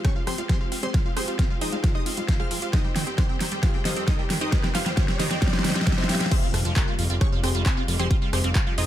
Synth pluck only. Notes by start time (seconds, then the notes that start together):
0.05 C#4 G4 G#4 C#5
0.16 F4
0.27 C4 G4 G#4 C5
0.38 F4
0.50 C4 G4 G#4 C5
0.61 F4
0.72 F4
0.83 C4 G4 G#4 C5
0.94 F4
1.06 F4
1.17 C4 G4 G#4 C5
1.28 F4
1.39 F4
1.50 F4
1.61 D#4 G#4 C5 D#5
1.73 F4
1.84 F4
1.95 D#4 G#4 C5 D#5
2.06 F4
2.17 F4
2.29 F4
2.40 F4 G#4 C5 F5
2.51 F4
2.62 F4
2.73 D#4 G4 C5 D#5
2.84 G4
2.96 G4
3.07 G4
3.18 C4 D#4 G4 C5
3.29 G4
3.41 G4
3.52 G4
3.63 F4 G4 C5 F5
3.74 G4
3.85 D#4 G4 C5 D#5
3.96 G4
4.08 D#4 G4 C5 D#5
4.19 G4
4.30 G4
4.41 D#4 G4 C5 D#5
4.64 G4
4.75 F4 G4 C5 F5
4.86 G4
4.97 G4
5.08 G4
5.20 D#4 G4 C5 D#5
5.31 G4
5.42 G4
5.53 C4 D#4 G4 C5
5.64 G4
5.75 G4
5.87 G4
5.98 C4 D#4 G4 C5
6.09 G4
6.20 G4
6.31 C4 G4 G#4 C5
6.42 F4
6.54 F4
6.65 F4
6.76 A#3 F4 G4 A#4
6.87 F4
6.99 F4
7.10 F4
7.21 C#4 G4 G#4 C#5
7.32 F4
7.43 C4 G4 G#4 C5
7.55 F4
7.66 C4 G4 G#4 C5
7.77 F4
7.88 F4
7.99 C4 G4 G#4 C5
8.11 F4
8.22 F4
8.33 C4 G4 G#4 C5
8.44 F4
8.56 F4
8.67 F4
8.78 D#4 G#4 C5 D#5